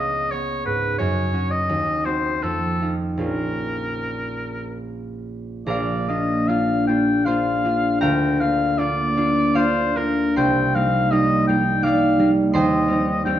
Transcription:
0.00 1.03 C#2 soft
0.00 0.31 B3 soft
0.00 1.33 C#4 soft
0.00 0.26 F4 soft
0.00 0.32 D#5 medium
0.31 1.03 B3 soft
0.31 0.65 C#5 medium
0.65 1.02 G#2 soft
0.65 0.98 B4 medium
0.98 1.73 F#2 soft
0.98 1.52 C#5 medium
1.34 1.73 C#4 soft
1.34 2.05 F#4 soft
1.51 2.07 D#5 medium
1.69 2.47 D#2 soft
2.05 3.26 C4 soft
2.05 2.47 F#4 soft
2.05 2.44 C5 medium
2.43 3.26 F2 soft
2.43 2.94 A4 medium
2.82 3.26 D#4 soft
2.82 3.20 F4 soft
3.17 5.66 A#1 soft
3.17 6.07 A#3 soft
3.17 5.70 C#4 soft
3.17 6.08 F4 soft
3.21 4.83 A#4 soft
5.66 8.05 A#1 soft
5.66 8.01 A#4 medium
5.66 6.10 D5 soft
5.66 8.01 F5 medium
5.66 8.00 A#5 medium
6.08 6.47 A#3 soft
6.08 6.48 D4 soft
6.08 6.48 F4 soft
6.08 6.49 D#5 medium
6.48 6.87 A#3 soft
6.48 6.87 D4 soft
6.48 6.88 F4 soft
6.48 6.86 F5 medium
6.87 7.26 A#3 soft
6.87 7.26 D4 soft
6.87 7.27 F4 soft
6.87 7.27 G5 medium
7.25 7.63 A#3 soft
7.25 7.64 D4 soft
7.25 7.65 F4 soft
7.25 8.05 C5 medium
7.25 8.00 F5 medium
7.25 8.56 C6 medium
7.65 8.39 A#3 soft
7.65 8.40 D4 soft
7.65 8.40 F4 soft
8.01 10.40 D2 soft
8.01 11.92 A#4 medium
8.01 9.54 F5 medium
8.01 8.42 G5 medium
8.01 11.91 A#5 medium
8.40 8.77 A#3 soft
8.40 8.78 D4 soft
8.40 8.78 F4 soft
8.40 8.80 F5 medium
8.78 9.16 A#3 soft
8.78 9.16 D4 soft
8.78 9.17 F4 soft
8.78 9.58 D5 medium
9.17 9.53 A#3 soft
9.17 9.55 D4 soft
9.17 9.55 F4 soft
9.54 9.95 A#3 soft
9.54 9.96 D4 soft
9.54 9.96 F4 medium
9.54 9.98 C5 medium
9.54 10.40 F5 medium
9.59 10.40 D5 medium
9.96 10.74 A#3 soft
9.96 10.40 D4 soft
9.96 10.41 F4 soft
9.96 10.36 A#4 medium
10.36 12.57 C2 medium
10.36 12.54 C5 medium
10.36 10.77 G5 medium
10.36 12.54 G5 medium
10.36 12.52 C6 medium
10.75 11.11 G3 soft
10.75 11.11 A#3 soft
10.75 11.12 D#4 soft
10.75 11.13 F5 medium
11.11 11.48 G3 soft
11.11 11.48 A#3 soft
11.11 11.48 D#4 soft
11.11 11.47 D#5 medium
11.47 11.83 G3 soft
11.47 11.82 A#3 soft
11.47 11.83 D#4 soft
11.47 11.85 G5 medium
11.83 12.18 G3 soft
11.83 12.18 A#3 soft
11.83 12.19 D#4 soft
11.83 12.57 D5 medium
11.83 12.30 F5 medium
11.83 13.03 D6 medium
12.19 12.88 G3 soft
12.19 12.57 A#3 soft
12.19 12.89 D#4 soft
12.53 13.39 D#2 medium
12.53 13.39 C5 medium
12.53 13.21 D#5 medium
12.53 13.39 G5 medium
12.53 13.39 C6 loud
12.88 13.25 G3 soft
12.88 13.25 C4 soft
12.88 13.25 D#4 soft
13.25 13.39 G3 medium
13.25 13.39 C4 soft
13.25 13.39 D#4 medium
13.25 13.39 G5 medium

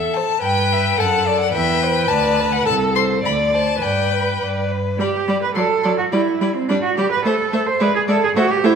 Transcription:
0.00 0.31 E2 medium
0.00 0.41 A4 soft
0.00 0.15 E5 medium
0.13 0.36 C5 medium
0.13 0.42 A5 medium
0.41 0.91 G2 medium
0.41 0.99 B4 soft
0.41 1.01 G5 medium
0.41 0.74 G5 soft
0.73 0.98 E5 soft
0.97 1.47 F#2 medium
0.97 1.53 A4 soft
0.97 1.29 F#5 soft
0.97 1.39 A5 medium
1.27 1.55 D5 soft
1.40 1.52 F#5 medium
1.53 2.03 E2 medium
1.53 2.67 B4 medium
1.53 1.85 E5 soft
1.53 2.10 G5 medium
1.83 2.10 C5 soft
2.08 2.60 D2 medium
2.08 2.41 D5 soft
2.08 2.54 A5 medium
2.40 2.66 B4 soft
2.52 2.65 F#5 medium
2.66 3.17 C2 medium
2.66 3.22 A4 medium
2.66 2.97 A4 soft
2.66 2.74 A5 medium
2.95 3.24 C5 soft
2.95 3.03 C6 medium
3.23 3.76 D2 medium
3.23 3.80 D5 medium
3.23 3.56 D5 soft
3.23 3.33 B5 medium
3.54 3.83 C5 soft
3.54 3.84 A5 medium
3.80 4.34 G2 soft
3.80 4.68 B4 soft
3.80 4.15 D5 soft
3.80 4.41 G5 medium
4.13 4.44 B4 soft
4.41 4.93 G2 soft
4.41 4.73 D5 soft
4.71 5.00 B4 soft
4.99 5.07 G3 soft
4.99 5.39 G4 medium
4.99 5.09 D5 soft
4.99 5.08 B5 soft
5.28 5.36 G3 soft
5.28 5.37 D5 soft
5.28 5.36 B5 soft
5.42 5.55 B4 medium
5.55 5.64 F#3 soft
5.55 5.97 A4 medium
5.55 5.66 D5 soft
5.55 5.63 C6 soft
5.83 5.93 F#3 soft
5.83 5.93 D5 soft
5.83 5.91 C6 soft
5.98 6.04 F#4 medium
6.12 6.21 G3 medium
6.12 6.56 E4 medium
6.12 6.20 D5 soft
6.12 6.20 B5 soft
6.41 6.49 G3 soft
6.41 6.50 D5 soft
6.41 6.49 B5 soft
6.55 6.68 C4 soft
6.69 6.77 G3 soft
6.69 6.74 D4 medium
6.69 6.79 D5 soft
6.69 6.77 B5 soft
6.83 6.96 F#4 medium
6.97 7.06 G3 soft
6.97 7.11 G4 medium
6.97 7.07 D5 soft
6.97 7.05 B5 soft
7.12 7.24 B4 medium
7.25 7.33 A3 medium
7.25 7.68 A4 medium
7.25 7.34 C5 soft
7.25 7.34 E5 soft
7.53 7.61 A3 soft
7.53 7.61 C5 soft
7.53 7.61 E5 soft
7.67 7.83 C5 medium
7.80 7.89 G#3 medium
7.80 7.95 B4 medium
7.80 7.88 D5 soft
7.80 7.88 E5 soft
7.95 8.01 G#4 medium
8.08 8.17 G#3 soft
8.08 8.22 A4 medium
8.08 8.16 D5 soft
8.08 8.17 E5 soft
8.24 8.29 G#4 medium
8.36 8.44 A3 medium
8.36 8.52 F#4 medium
8.36 8.45 C5 medium
8.36 8.44 E5 medium
8.51 8.66 G4 medium
8.63 8.71 A3 medium
8.63 8.75 E4 medium
8.63 8.73 C5 soft
8.63 8.72 E5 medium

